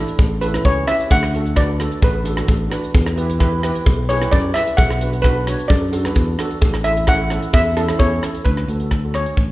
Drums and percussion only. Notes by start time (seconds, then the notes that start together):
0.08 closed hi-hat
0.19 kick, closed hi-hat, cowbell
0.42 closed hi-hat, cowbell
0.54 cross-stick, closed hi-hat
0.65 kick, closed hi-hat, cowbell
0.88 cross-stick, closed hi-hat
1.00 closed hi-hat
1.10 kick, closed hi-hat, cowbell
1.23 cross-stick
1.34 closed hi-hat
1.46 closed hi-hat
1.56 kick, cross-stick, closed hi-hat, cowbell
1.80 cross-stick, closed hi-hat
1.92 closed hi-hat
2.02 kick, closed hi-hat, cowbell
2.25 closed hi-hat, cowbell
2.37 cross-stick, closed hi-hat
2.48 kick, closed hi-hat, cowbell
2.72 cross-stick, closed hi-hat
2.84 closed hi-hat
2.95 kick, closed hi-hat, cowbell
3.06 cross-stick
3.18 closed hi-hat
3.30 closed hi-hat
3.40 kick, cross-stick, closed hi-hat, cowbell
3.63 cross-stick, closed hi-hat
3.75 closed hi-hat
3.86 kick, closed hi-hat, cowbell
4.10 closed hi-hat, cowbell
4.22 cross-stick, closed hi-hat
4.32 kick, closed hi-hat, cowbell
4.56 cross-stick, closed hi-hat
4.67 closed hi-hat
4.78 kick, closed hi-hat, cowbell
4.90 cross-stick
5.01 closed hi-hat
5.13 closed hi-hat
5.24 kick, cross-stick, closed hi-hat, cowbell
5.47 cross-stick, closed hi-hat
5.59 closed hi-hat
5.70 kick, closed hi-hat, cowbell
5.93 closed hi-hat, cowbell
6.05 cross-stick, closed hi-hat
6.16 kick, closed hi-hat, cowbell
6.39 cross-stick, closed hi-hat
6.51 closed hi-hat
6.62 kick, closed hi-hat, cowbell
6.74 cross-stick
6.84 closed hi-hat
6.97 closed hi-hat
7.07 kick, cross-stick, closed hi-hat, cowbell
7.30 cross-stick, closed hi-hat
7.42 closed hi-hat
7.53 kick, closed hi-hat, cowbell
7.77 closed hi-hat, cowbell
7.89 cross-stick, closed hi-hat
7.99 kick, closed hi-hat, cowbell
8.23 cross-stick, closed hi-hat
8.34 closed hi-hat
8.45 kick, closed hi-hat
8.57 cross-stick
8.68 closed hi-hat
8.80 closed hi-hat
8.91 kick, cross-stick, closed hi-hat
9.14 cross-stick, closed hi-hat
9.26 closed hi-hat
9.37 kick, closed hi-hat